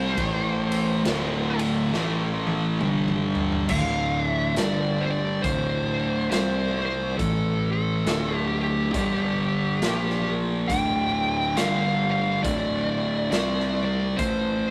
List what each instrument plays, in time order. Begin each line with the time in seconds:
Already playing: fingered electric bass C2, distorted electric guitar C3 G3 C4, lead electric guitar C5
0.17 fingered electric bass A1, distorted electric guitar A2 E3 A3, kick, ride
0.72 ride
1.05 fingered electric bass D1, distorted electric guitar D2 A2 D3, snare, ride
1.59 ride
1.93 fingered electric bass A1, distorted electric guitar A2 E3 A3, snare
2.47 high tom
2.80 fingered electric bass G1, distorted electric guitar G2 D3 G3, mid tom
3.08 mid tom
3.35 floor tom
3.52 floor tom
3.69 fingered electric bass D1, distorted electric guitar D2 A2 D3, lead electric guitar F5, kick, crash
4.27 lead electric guitar E5
4.56 fingered electric bass G1, distorted electric guitar G2 D3 G3, lead electric guitar D5, snare, closed hi-hat
5.01 lead electric guitar C5
5.10 lead electric guitar D5
5.42 fingered electric bass D1, distorted electric guitar D2 A2 D3, lead electric guitar C5, kick, closed hi-hat
6.31 fingered electric bass C2, distorted electric guitar C3 G3 C4, lead electric guitar C5, snare, closed hi-hat
6.86 lead electric guitar C5
7.18 fingered electric bass A1, distorted electric guitar A2 E3 A3, lead electric guitar A4, kick, closed hi-hat
7.72 lead electric guitar A4
8.06 fingered electric bass D1, distorted electric guitar D2 A2 D3, snare, closed hi-hat
8.37 lead electric guitar G4
8.61 lead electric guitar G4
8.94 fingered electric bass G1, distorted electric guitar G2 D3 G3, kick, closed hi-hat
9.82 fingered electric bass A#1, distorted electric guitar A#2 F3 A#3, snare, closed hi-hat
10.10 snare
10.68 fingered electric bass D1, distorted electric guitar D2 A2 D3, lead electric guitar G5, kick, closed hi-hat
11.56 fingered electric bass G1, distorted electric guitar G2 D3 G3, lead electric guitar F5, snare, closed hi-hat
12.11 lead electric guitar F5
12.43 fingered electric bass D1, distorted electric guitar D2 A2 D3, lead electric guitar D5, kick, closed hi-hat
13.31 fingered electric bass C2, distorted electric guitar C3 G3 C4, lead electric guitar D5, snare, closed hi-hat
13.60 snare
13.84 lead electric guitar D5
14.17 fingered electric bass A1, distorted electric guitar A2 E3 A3, lead electric guitar C5, kick, closed hi-hat